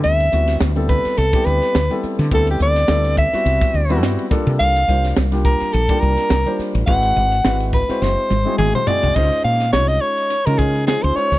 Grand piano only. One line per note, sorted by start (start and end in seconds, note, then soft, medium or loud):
0.00 0.24 G3 medium
0.00 0.24 B3 medium
0.00 0.24 C4 medium
0.00 0.24 E4 medium
0.00 0.25 A4 medium
0.32 0.68 G3 medium
0.32 0.68 B3 medium
0.32 0.69 C4 medium
0.32 0.69 E4 medium
0.32 0.69 F#4 medium
0.75 1.22 G3 medium
0.75 1.22 B3 medium
0.75 1.23 C4 medium
0.75 1.23 E4 medium
0.75 1.23 A4 medium
1.33 1.79 G3 medium
1.33 1.80 B3 medium
1.33 1.80 C4 medium
1.33 1.80 E4 medium
1.33 1.80 G4 medium
1.90 2.25 G3 medium
1.90 2.25 B3 medium
1.90 2.25 C4 medium
1.90 2.26 E4 medium
1.90 2.26 A4 medium
2.32 2.80 G3 medium
2.32 2.80 B3 medium
2.32 2.80 C4 medium
2.32 2.81 E4 medium
2.32 2.81 A4 medium
2.88 3.25 G3 medium
2.88 3.25 B3 medium
2.88 3.25 C4 medium
2.88 3.25 E4 medium
2.88 3.25 A4 medium
3.33 3.79 G3 medium
3.33 3.79 B3 medium
3.33 3.79 C4 medium
3.33 3.79 E4 medium
3.33 3.80 F#4 medium
3.89 4.24 G3 loud
3.89 4.24 B3 medium
3.89 4.25 C4 medium
3.89 4.25 E4 medium
3.89 4.25 F#4 loud
4.30 4.79 G3 medium
4.30 4.79 A#3 medium
4.30 4.79 D4 medium
4.30 4.80 F4 medium
4.30 4.80 A4 loud
4.87 5.24 G3 medium
4.87 5.24 A#3 medium
4.87 5.24 D4 medium
4.87 5.25 F4 medium
4.87 5.25 C5 medium
5.32 5.78 G3 medium
5.32 5.78 A#3 medium
5.32 5.78 D4 medium
5.32 5.79 F4 medium
5.32 5.79 G4 medium
5.89 6.35 G3 medium
5.89 6.36 A#3 medium
5.89 6.36 D4 medium
5.89 6.36 F4 medium
5.89 6.36 G4 medium
6.46 6.81 G3 medium
6.46 6.81 A#3 medium
6.46 6.81 D4 medium
6.46 6.81 F4 medium
6.46 6.82 C5 medium
6.87 7.36 G#3 medium
6.87 7.36 C4 medium
6.87 7.36 E4 medium
6.87 7.36 F#4 medium
6.87 7.36 B4 medium
7.44 7.81 G#3 medium
7.44 7.81 C4 medium
7.44 7.81 E4 medium
7.44 7.81 F#4 medium
7.44 7.82 B4 medium
7.89 8.35 G#3 medium
7.89 8.35 C4 medium
7.89 8.36 E4 medium
7.89 8.36 F#4 medium
7.89 8.36 C5 medium
8.45 8.81 G#3 medium
8.45 8.81 C4 medium
8.45 8.81 E4 medium
8.45 8.81 F#4 medium
8.45 8.82 G#4 medium
8.87 9.14 G#3 medium
8.87 9.16 C4 medium
8.87 9.16 E4 medium
8.87 9.17 F#4 medium
8.87 9.17 G#4 medium
9.15 9.64 G#3 medium
9.15 9.64 C#4 medium
9.15 9.65 D#4 medium
9.15 9.65 F4 medium
9.15 9.65 C5 medium
9.73 10.33 G#3 medium
9.73 10.33 C#4 medium
9.73 10.33 D#4 medium
9.73 10.33 F4 medium
9.73 10.34 C#5 medium
10.46 10.81 G#3 medium
10.46 10.81 C#4 medium
10.46 10.82 D#4 medium
10.46 10.82 F4 medium
10.46 10.82 A#4 medium
10.87 11.01 G#3 medium
10.87 11.01 C#4 medium
10.87 11.01 D#4 medium
10.87 11.01 F4 medium
10.87 11.02 C5 medium
11.03 11.14 G#3 medium
11.03 11.14 C#4 medium
11.03 11.14 D#4 medium
11.03 11.15 F4 medium
11.03 11.15 G#4 medium
11.15 11.39 G#3 medium
11.15 11.39 C#4 medium
11.15 11.39 D#4 medium
11.15 11.39 F4 medium
11.15 11.39 C5 medium